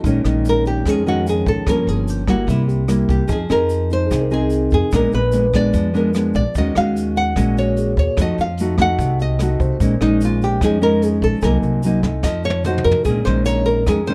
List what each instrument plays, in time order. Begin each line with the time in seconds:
0.03 upright bass A#1, nylon-string guitar A#2 D#3 G#3 C#4, tine electric piano D#4, kick, closed hi-hat, shaker
0.25 upright bass A#1, nylon-string guitar D#3 G#3 C#4, cross-stick, shaker
0.45 closed hi-hat, shaker
0.49 nylon-string guitar A#4
0.65 nylon-string guitar G4, closed hi-hat, shaker
0.86 upright bass F2, nylon-string guitar F2 D#3 G#3 C#4 G#4, tine electric piano G#4, kick, cross-stick, closed hi-hat, shaker
1.06 nylon-string guitar D#3 G#3 C#4 F#4, closed hi-hat, shaker
1.27 nylon-string guitar G#4, closed hi-hat, shaker
1.46 upright bass A#1, nylon-string guitar A4, kick, closed hi-hat, shaker
1.67 upright bass G1, nylon-string guitar G2 F3 A#3 C#4 A#4, kick, cross-stick, closed hi-hat, shaker
1.87 upright bass G1, nylon-string guitar G#4, closed hi-hat, shaker
2.08 nylon-string guitar G4, closed hi-hat, shaker
2.27 nylon-string guitar G3 A#3 E4 F#4, kick, cross-stick, closed hi-hat, shaker
2.47 upright bass C2, nylon-string guitar C3 E4, kick, closed hi-hat, shaker
2.68 tine electric piano G4, closed hi-hat, shaker
2.88 nylon-string guitar G3 A#3 E4, cross-stick, closed hi-hat, shaker
3.09 upright bass C2, nylon-string guitar G4, kick, closed hi-hat, shaker
3.28 upright bass F2, nylon-string guitar F3 C4 D#4 G#4, kick, closed hi-hat, shaker
3.32 nylon-string guitar G#4
3.50 upright bass F2, nylon-string guitar C4 D#4 G#4 A#4, cross-stick, closed hi-hat, shaker
3.69 closed hi-hat, shaker
3.90 tine electric piano D#4, nylon-string guitar C5, closed hi-hat, shaker
4.07 nylon-string guitar C3 C4, tine electric piano G#4
4.11 upright bass C2, nylon-string guitar D#4 G#4, kick, cross-stick, closed hi-hat, shaker
4.21 tine electric piano A#4
4.31 nylon-string guitar C4 D#4 G#4, closed hi-hat, shaker
4.50 closed hi-hat, shaker
4.71 upright bass F2, nylon-string guitar G#4, kick, closed hi-hat, shaker
4.91 upright bass A#1, nylon-string guitar A#2 G#3 B3 D4 A#4, kick, cross-stick, closed hi-hat, shaker
5.12 upright bass A#1, nylon-string guitar B4, closed hi-hat, shaker
5.32 nylon-string guitar G#3 B3 D4, closed hi-hat, shaker
5.53 nylon-string guitar G#3 B3 D4 D5, kick, cross-stick, closed hi-hat, shaker
5.73 upright bass F2, nylon-string guitar F3, kick, closed hi-hat, shaker
5.94 nylon-string guitar G#3 B3 D4 A#4, closed hi-hat, shaker
6.14 nylon-string guitar G#3 B3 D4, cross-stick, closed hi-hat, shaker
6.34 upright bass A#1, nylon-string guitar D5, kick, closed hi-hat, shaker
6.55 upright bass D#2, nylon-string guitar D#3 G#3 C#4 F#4 D#5, kick, closed hi-hat, shaker
6.75 upright bass D#2, nylon-string guitar G#3 C#4 F#4 F5, cross-stick, closed hi-hat, shaker
6.96 closed hi-hat, shaker
7.16 nylon-string guitar F#5, closed hi-hat, shaker
7.36 upright bass A#1, nylon-string guitar A#2 G#3 C#4 F#4, kick, cross-stick, closed hi-hat, shaker
7.56 tine electric piano F#4, nylon-string guitar C#5, closed hi-hat, shaker
7.76 tine electric piano G#4, closed hi-hat, shaker
7.96 upright bass D#2, nylon-string guitar C#5, kick, closed hi-hat, shaker
8.17 upright bass F2, nylon-string guitar F3 A3 D#4 F#4, kick, cross-stick, closed hi-hat, shaker
8.21 nylon-string guitar D#5
8.38 upright bass F2, nylon-string guitar F5, closed hi-hat, shaker
8.57 nylon-string guitar A3 D#4 F#4, closed hi-hat, shaker
8.78 nylon-string guitar A3 D#4 F#4 F#5, kick, cross-stick, closed hi-hat, shaker
8.98 upright bass C2, nylon-string guitar C3, kick, closed hi-hat, shaker
9.19 nylon-string guitar D#5, closed hi-hat, shaker
9.39 nylon-string guitar A3 D#4 F#4, cross-stick, closed hi-hat, shaker
9.60 upright bass C2, tine electric piano C5, kick, closed hi-hat, shaker
9.80 upright bass A#1, nylon-string guitar A#2 G#3 C#4 D#4, kick, closed hi-hat, shaker
10.01 upright bass A#1, nylon-string guitar G#3 C#4 D#4, cross-stick, closed hi-hat, shaker
10.21 nylon-string guitar F4, closed hi-hat, shaker
10.41 nylon-string guitar G4, closed hi-hat, shaker
10.61 upright bass F2, nylon-string guitar F3 G#3 C#4 D#4 G#4, kick, cross-stick, closed hi-hat, shaker
10.81 nylon-string guitar G#3 C#4 D#4 A#4, closed hi-hat, shaker
11.02 nylon-string guitar G#4, closed hi-hat, shaker
11.22 upright bass A#1, nylon-string guitar A4, kick, closed hi-hat, shaker
11.41 upright bass C2, nylon-string guitar C3 F#3 A#3 D#4 A#4, tine electric piano G#5, kick, cross-stick, closed hi-hat, shaker
11.63 upright bass C2, closed hi-hat, shaker
11.83 nylon-string guitar F#3 A#3 D#4, closed hi-hat, shaker
12.03 nylon-string guitar A3 D#4, kick, cross-stick, closed hi-hat, shaker
12.23 upright bass F2, nylon-string guitar F3 D#5, kick, snare, shaker
12.44 nylon-string guitar C#5, shaker
12.50 high tom
12.65 nylon-string guitar A3 D#4 F#4 C5, mid tom, shaker
12.78 mid tom
12.84 upright bass F2, nylon-string guitar A#4, shaker
12.91 floor tom
13.05 upright bass A#1, nylon-string guitar A#2 D#3 G#3 C#4 G#4, kick, closed hi-hat, shaker
13.25 upright bass A#1, nylon-string guitar D#3 G#3 C#4 C5, cross-stick, closed hi-hat, shaker
13.45 nylon-string guitar C#5, tine electric piano A#5, closed hi-hat, shaker
13.66 nylon-string guitar A#4, closed hi-hat, shaker
13.87 upright bass F2, nylon-string guitar F2 D#3 G#3 C#4 G#4, kick, cross-stick, closed hi-hat, shaker
14.06 nylon-string guitar D#3 G#3 C#4 C5, closed hi-hat, shaker